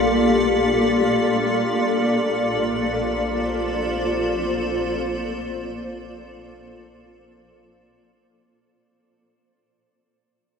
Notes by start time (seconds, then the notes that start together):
Already playing: A#1 A#3 F4 G4 A4 D5 F5
1.74 A#1
2.12 F4
2.34 C5